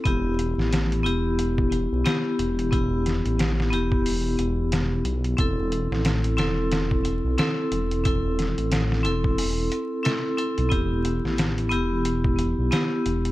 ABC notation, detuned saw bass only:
X:1
M:4/4
L:1/16
Q:"Swing 16ths" 1/4=90
K:Em
V:1 name="Detuned saw bass" clef=bass
E,,,3 A,,,3 E,,,4- E,,, B,,, z2 E,,,2- | E,,,3 A,,,3 E,,,4 E,,,4 B,,,2 | E,,,3 A,,,3 E,,,4- E,,, B,,, z2 E,,,2- | E,,,3 A,,,3 E,,,4 z4 z B,,, |
E,,,3 A,,,3 E,,,4- E,,, B,,, z2 E,,,2 |]